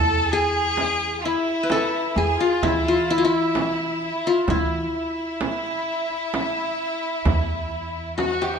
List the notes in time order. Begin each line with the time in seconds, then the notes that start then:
Already playing: E2 A4
0.31 G#4
0.77 darbuka tek, frame drum
1.19 F4
1.23 E4
1.49 darbuka ka
1.63 B4
1.70 A4, darbuka tek, frame drum
2.16 E2 G#4
2.40 F4
2.62 E3 E4, frame drum, darbuka dum
2.86 F4
3.10 E4, darbuka ka
3.18 F4
3.24 E4
3.55 darbuka tek, frame drum
4.01 E4, darbuka ka
4.26 F4, darbuka ka
4.47 E3 E4, frame drum, darbuka dum
4.95 darbuka ka
5.41 darbuka tek, frame drum
6.10 darbuka ka
6.34 darbuka tek, frame drum
7.25 E2, frame drum, darbuka dum
8.18 F#4, darbuka tek, frame drum
8.31 darbuka ka
8.41 G4, darbuka tek
8.54 darbuka ka